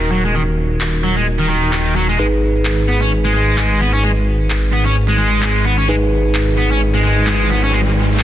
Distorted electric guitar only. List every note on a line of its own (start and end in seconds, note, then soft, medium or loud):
0.00 0.11 D#3 medium
0.11 0.22 F#3 medium
0.24 0.34 G#3 medium
0.34 0.41 D#3 medium
1.04 1.15 F#3 medium
1.17 1.26 G#3 medium
1.40 1.48 D#3 medium
1.49 1.71 D#3 medium
1.72 1.95 D#3 medium
1.96 2.07 F#3 medium
2.09 2.18 G#3 medium
2.19 2.26 G#3 medium
2.88 2.99 B3 medium
3.01 3.11 C#4 medium
3.24 3.33 G#3 medium
3.34 3.56 G#3 medium
3.57 3.80 G#3 medium
3.81 3.92 B3 medium
3.93 4.03 C#4 medium
4.04 4.10 G#3 medium
4.73 4.84 B3 medium
4.86 4.96 C#4 medium
5.09 5.17 G#3 medium
5.19 5.41 G#3 medium
5.42 5.64 G#3 medium
5.65 5.76 B3 medium
5.78 5.88 C#4 medium
5.89 5.95 G#3 medium
6.57 6.69 B3 medium
6.71 6.80 C#4 medium
6.94 7.03 G#3 medium
7.04 7.26 G#3 medium
7.27 7.49 G#3 medium
7.50 7.61 B3 medium
7.64 7.73 C#4 medium
7.73 7.80 G#3 medium